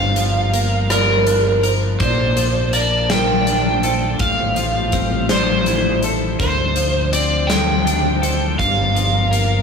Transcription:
Already playing: fingered electric bass G1, clean electric guitar G2 D4, string section F3 G3 D4 A#4, felt piano C5, electric slide guitar F5
0.16 clean electric guitar F3, closed hi-hat
0.53 clean electric guitar A#3, closed hi-hat
0.90 clean electric guitar F3, electric slide guitar A#4, felt piano D5, cross-stick, closed hi-hat
1.27 clean electric guitar D4, closed hi-hat
1.63 clean electric guitar A#4, felt piano C5, closed hi-hat
1.99 fingered electric bass A#1, clean electric guitar A#2, string section A#3 D5 A5, electric slide guitar C5, felt piano D5, kick, closed hi-hat
2.37 clean electric guitar F3, closed hi-hat
2.73 clean electric guitar A#3, electric slide guitar D5, closed hi-hat
3.10 clean electric guitar F3, felt piano A#4, electric slide guitar G5, snare, closed hi-hat
3.47 clean electric guitar D4, closed hi-hat
3.83 clean electric guitar A4, felt piano C5, closed hi-hat
4.19 fingered electric bass A1, clean electric guitar A2, string section A3 G4 C5, electric slide guitar F5, kick, closed hi-hat
4.56 clean electric guitar F3, closed hi-hat
4.92 clean electric guitar C4, kick, closed hi-hat
5.29 clean electric guitar F3, electric slide guitar C5, felt piano D5, snare, closed hi-hat
5.66 clean electric guitar E4, closed hi-hat
6.03 clean electric guitar A4, felt piano C5, closed hi-hat
6.40 fingered electric bass D2, clean electric guitar D3, string section D3 D4 F4 C5, felt piano C5, electric slide guitar C5, kick, closed hi-hat
6.76 clean electric guitar F3, closed hi-hat
7.13 clean electric guitar C4, electric slide guitar D5, closed hi-hat
7.47 clean electric guitar F3, felt piano A4, electric slide guitar G5, snare, closed hi-hat
7.86 clean electric guitar D4, closed hi-hat
8.22 clean electric guitar A4, felt piano C5, closed hi-hat
8.59 fingered electric bass G1, clean electric guitar G2, string section G3 A#4, electric slide guitar F5, kick, closed hi-hat
8.95 clean electric guitar F3, closed hi-hat
9.31 clean electric guitar A#3, closed hi-hat

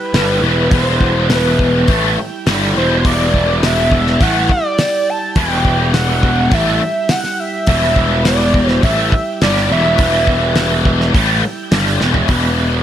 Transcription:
Already playing: transistor combo organ G3 E4 G4, analog synth lead B4
0.14 picked electric bass G1, overdriven electric guitar G2 D3 G3, snare, open hi-hat
0.42 picked electric bass E1, overdriven electric guitar E2 B2 E3
0.71 picked electric bass E1, overdriven electric guitar E2 B2 E3, analog synth lead C5, kick, open hi-hat
1.01 kick
1.30 snare, open hi-hat
1.35 analog synth lead B4
1.59 kick
1.88 picked electric bass A1, overdriven electric guitar A2 E3 A3, kick, open hi-hat
2.46 picked electric bass G1, overdriven electric guitar G2 D3 G3, snare, open hi-hat
2.76 picked electric bass E1, overdriven electric guitar E2 B2 E3, analog synth lead C5
3.05 picked electric bass E1, overdriven electric guitar E2 B2 E3, analog synth lead D5, kick, open hi-hat
3.34 kick
3.63 analog synth lead E5, snare, open hi-hat
3.92 kick
4.07 snare
4.20 picked electric bass A1, overdriven electric guitar A2 E3 A3, analog synth lead F#5, kick, open hi-hat
4.49 analog synth lead D5, kick
4.78 snare, open hi-hat
5.10 analog synth lead A5
5.36 picked electric bass E1, overdriven electric guitar E2 B2 E3, analog synth lead G5, kick, open hi-hat
5.65 kick
5.94 analog synth lead F#5, snare, open hi-hat
6.23 kick
6.51 picked electric bass A1, overdriven electric guitar A2 E3 A3, analog synth lead E5, kick, open hi-hat
7.09 analog synth lead F#5, snare, open hi-hat
7.24 snare
7.40 analog synth lead E5
7.66 picked electric bass E1, overdriven electric guitar E2 B2 E3, analog synth lead E5, kick, open hi-hat
7.96 kick
8.25 analog synth lead D5, snare, open hi-hat
8.54 kick
8.68 analog synth lead C5, snare
8.83 picked electric bass A1, overdriven electric guitar A2 E3 A3, analog synth lead E5, kick, open hi-hat
9.12 kick
9.41 picked electric bass G1, overdriven electric guitar G2 D3 G3, analog synth lead D5, snare, open hi-hat
9.57 snare
9.71 picked electric bass E1, overdriven electric guitar E2 B2 E3, analog synth lead E5
9.98 picked electric bass E1, overdriven electric guitar E2 B2 E3, kick, open hi-hat
10.27 kick
10.55 snare, open hi-hat
10.85 kick
11.01 snare
11.13 picked electric bass A1, overdriven electric guitar A2 E3 A3, kick, open hi-hat
11.72 picked electric bass G1, overdriven electric guitar G2 D3 G3, snare, open hi-hat
11.86 snare
12.01 picked electric bass E1, overdriven electric guitar E2 B2 E3, snare
12.14 floor tom
12.28 picked electric bass E1, overdriven electric guitar E2 B2 E3, transistor combo organ B3 E4 G4, kick, open hi-hat

